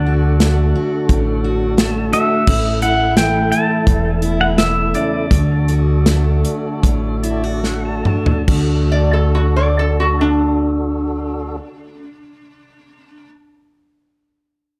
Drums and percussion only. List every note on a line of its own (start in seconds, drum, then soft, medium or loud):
0.40 snare loud
0.40 closed hi-hat medium
1.09 kick medium
1.09 closed hi-hat medium
1.78 snare loud
1.78 closed hi-hat medium
2.13 closed hi-hat medium
2.47 kick loud
2.47 crash loud
2.82 closed hi-hat medium
3.17 snare loud
3.17 closed hi-hat medium
3.52 closed hi-hat medium
3.87 kick loud
3.87 closed hi-hat medium
4.22 closed hi-hat medium
4.58 snare medium
4.58 closed hi-hat medium
4.94 closed hi-hat soft
5.31 kick loud
5.31 closed hi-hat medium
5.68 closed hi-hat soft
6.06 snare loud
6.06 closed hi-hat medium
6.45 closed hi-hat medium
6.83 kick medium
6.83 closed hi-hat medium
7.23 closed hi-hat medium
7.64 snare medium
8.05 mid tom medium
8.26 floor tom medium
8.48 kick loud
8.48 crash medium